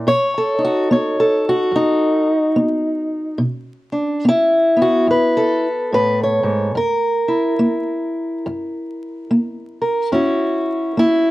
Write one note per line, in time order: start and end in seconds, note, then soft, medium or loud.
0.07 0.84 B2 medium
0.07 0.63 C#5 loud
0.38 1.19 A4 medium
0.58 1.74 D#4 soft
0.65 0.91 F#4 medium
0.91 1.68 B3 medium
0.91 1.47 C#5 medium
1.20 2.31 A4 medium
1.49 2.59 F#4 medium
1.71 2.50 F#2 medium
1.76 3.42 D#4 medium
2.56 3.34 B3 medium
3.38 4.17 B2 medium
3.92 4.25 D4 soft
4.25 4.75 B3 medium
4.25 5.67 E4 medium
4.76 6.73 B3 soft
4.82 5.09 F#4 medium
5.07 5.85 F#2 medium
5.07 5.93 B4 medium
5.37 6.77 A4 medium
5.92 6.43 A2 medium
5.92 6.21 B4 medium
6.23 6.77 C#5 medium
6.43 6.75 G#2 medium
6.75 7.53 F#2 medium
6.75 9.80 A#4 medium
7.28 10.09 E4 soft
7.59 8.37 A#3 medium
8.46 9.23 F#2 medium
9.31 10.07 A#3 medium
9.82 10.10 A#4 soft
10.12 10.90 F#2 medium
10.12 11.31 C#4 soft
10.12 10.97 E4 soft
10.12 11.31 F#4 soft
10.97 11.31 A#3 medium
10.97 11.31 E4 medium